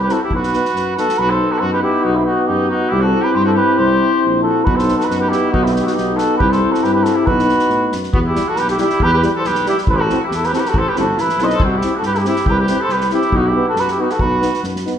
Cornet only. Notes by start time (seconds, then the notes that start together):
0.04 B4
0.12 A4
0.24 G4
0.35 B4
0.99 A4
1.18 B4
1.30 C5
1.52 A4
1.60 C5
1.73 B4
1.83 G4
2.04 F#4
2.15 E4
2.25 F#4
2.47 G4
2.70 F#4
2.92 G4
3.03 A4
3.24 B4
3.35 C5
3.46 A4
3.57 B4
3.78 C5
4.43 A4
4.64 B4
4.76 C5
4.97 A4
5.05 B4
5.19 B4
5.29 G4
5.51 F#4
5.64 E4
5.72 F#4
5.81 F#4 G4
5.92 G4
6.15 A4
6.38 B4
6.52 C5
6.72 A4
6.84 B4
6.94 B4
7.03 A4
7.16 G4
7.26 B4
8.13 F#4
8.28 G4
8.49 A4
8.58 B4
8.70 G4
8.80 G4
9.03 B4
9.17 B4
9.38 C5
9.47 B4
9.69 G4
9.90 B4 C5
9.98 A4 B4
10.25 G4
10.36 A4
10.46 B4
10.54 A4
10.59 B4
10.68 A4
10.77 C5
10.90 B4
11.00 A4
11.21 B4
11.43 C5 D#5
11.54 C5
11.65 F#4
11.78 G4
11.98 A4
12.07 B4
12.19 G4
12.28 G4
12.51 B4
12.62 B4
12.84 C5
12.93 B4
13.14 G4
13.37 F#4
13.48 G4
13.69 A4
13.80 B4
13.91 G4
14.01 F#4
14.11 A4
14.22 B4